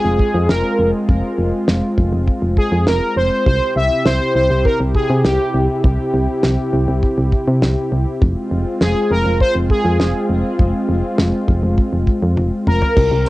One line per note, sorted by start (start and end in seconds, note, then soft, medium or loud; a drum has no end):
0.00 3.42 G#3 medium
0.00 8.18 C4 medium
0.00 3.42 F4 medium
0.00 0.51 G#4 medium
0.05 0.18 F1 medium
0.19 kick medium
0.34 0.48 F2 loud
0.49 0.63 F1 loud
0.49 0.91 A#4 medium
0.49 snare loud
0.79 0.93 F1 medium
1.09 1.22 F1 loud
1.09 kick loud
1.38 1.52 F1 medium
1.68 1.82 F1 loud
1.68 snare loud
1.98 2.11 F1 loud
1.98 kick medium
2.13 2.26 F1 loud
2.27 kick medium
2.42 2.56 F1 medium
2.57 2.85 G#4 medium
2.57 kick medium
2.72 2.86 F2 medium
2.87 3.01 F1 medium
2.87 3.15 A#4 medium
2.87 snare loud
3.16 3.30 F1 medium
3.16 3.45 C5 medium
3.46 3.60 C2 loud
3.46 8.18 C3 medium
3.46 8.18 E4 medium
3.46 8.18 G4 medium
3.46 3.74 C5 loud
3.46 kick loud
3.76 3.90 C2 loud
3.76 4.07 E5 loud
4.06 4.19 C2 loud
4.06 4.34 C5 loud
4.06 snare loud
4.35 4.49 C2 medium
4.35 4.66 C5 loud
4.50 4.64 C2 medium
4.65 4.78 A#4 medium
4.65 kick medium
4.80 4.94 C2 medium
4.95 5.26 G#4 medium
4.95 kick medium
5.10 5.23 C3 medium
5.25 5.38 C2 medium
5.25 5.66 G4 medium
5.25 snare loud
5.54 5.68 C2 medium
5.84 5.98 C2 loud
5.84 kick loud
6.14 6.27 C2 loud
6.43 6.57 C2 loud
6.43 snare loud
6.73 6.87 C2 medium
6.88 7.02 C2 loud
7.03 kick medium
7.18 7.31 C2 medium
7.32 kick medium
7.48 7.61 C3 medium
7.62 7.76 C2 medium
7.62 snare loud
7.92 8.06 C2 medium
8.22 8.35 F1 loud
8.22 12.93 G#3 medium
8.22 12.93 C4 medium
8.22 12.93 F4 medium
8.22 kick loud
8.51 8.65 F1 loud
8.81 8.95 F1 loud
8.81 9.12 G#4 medium
8.81 snare loud
9.11 9.24 F1 loud
9.11 9.38 A#4 medium
9.26 9.39 F1 loud
9.40 9.54 C5 loud
9.40 kick medium
9.55 9.69 F1 medium
9.70 10.26 G#4 medium
9.70 kick medium
9.85 9.99 F2 loud
10.00 10.13 F1 medium
10.00 snare loud
10.30 10.43 F1 medium
10.59 10.73 F1 medium
10.59 kick loud
10.89 11.03 F1 loud
11.18 11.32 F1 loud
11.18 snare loud
11.48 11.62 F1 loud
11.48 kick medium
11.63 11.77 F1 loud
11.78 kick medium
11.93 12.07 F1 medium
12.07 kick medium
12.23 12.36 F2 medium
12.37 12.51 F1 medium
12.37 high tom medium
12.67 12.81 F1 medium
12.67 13.29 A#4 medium
12.67 mid tom medium
12.82 floor tom medium
12.97 13.10 C2 loud
12.97 13.29 C3 medium
12.97 13.29 C4 medium
12.97 13.29 E4 medium
12.97 13.29 G4 medium
12.97 kick loud
12.97 crash medium
13.12 13.25 C2 medium